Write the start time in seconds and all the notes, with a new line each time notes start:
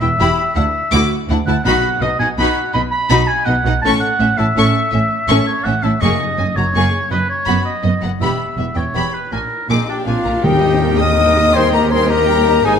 0.00 E1 E2 E4 E5 G5
0.19 E1 E2 E4 G4 B5
0.56 D2 D4 E4 E5 F#5
0.92 D2 E4 F#4 D6
1.28 D2 D4 E4 F#5
1.46 D2 E4 F#5 A5
1.64 B1 B2 D#4 F#4 F#5 B5
2.01 B1 B2 B3 D#4 D#5
2.19 B1 B2 D#4 F#5 G#5
2.37 B1 B2 D#4 F#4 F#5 B5
2.73 B1 B2 B3 D#4 D#5 B5
2.92 B5
3.10 B1 B2 D#4 F#4 B5
3.27 G#5
3.45 B1 B2 B3 D#4 D#5 F#5
3.65 B1 B2 D#4 F#5
3.82 A1 A2 C#4 A4 A5 C#6
4.00 F#5
4.19 A1 A2 C#4 E5
4.37 A1 A2 C#4 E4 E5 A5
4.55 A1 A2 C#4 A4 C#6
4.92 A1 A2 C#4 E5
5.28 A1 A2 C#4 A4 C#6
5.47 C#5
5.64 A1 A2 C#4 E5 F#5
5.83 A1 A2 C#4 E4 E5 A5
6.01 F#1 F#2 A#3 G#4 D#5 C#6
6.38 F#1 F#2 A#3 C#4 G#5
6.56 F#1 F#2 A#3 F#4 C#5 A#5
6.74 F#1 F#2 A#3 G#4 C#6
7.11 F#1 F#2 B3 B4 D#5
7.29 C#5
7.46 F#1 F#2 B3 F#4 B5
7.65 D#5
7.84 F#1 F#2 B3 D#5
8.02 F#1 F#2 B3 D#4 F#5
8.20 E1 E2 B3 G4 E5 B5
8.57 E1 E2 B3 E5
8.75 E1 E2 B3 E4 C#5 G5
8.94 E1 E2 B3 G4 B5
9.14 B4
9.32 A#1 A#2 A#3 D4 A#4 G#5
9.69 A#1 A#2 A#3 C4 D#4 G#4 D#5 D6
9.87 D4 G4 G5
10.06 A#1 A#2 C4 D4 F4 F5 G#5
10.25 A#1 A#2 A#3 F4 A#5
10.42 D#2 D#3 G3 D#4 G4 A#4 G5, tam-tam
10.61 A#3 G4 D#5
10.80 G3 A#4 G5
10.98 A#3 G4 A#4 D#5 D#6
11.17 G3 A#4 G5
11.36 A#3 G4 D#5
11.53 G3 G#4 A#4 C5 G5 C6
11.73 A#3 G4 A#4 D#5 A#5
11.91 G3 G#4 A#4 C5 G5 C6
12.07 A#3 G4 A#4 D#5 A#5
12.28 G3 A#4 G5
12.46 A#3 G4 D#5
12.63 G#1 G#2 D#4 G#4 C5 G#5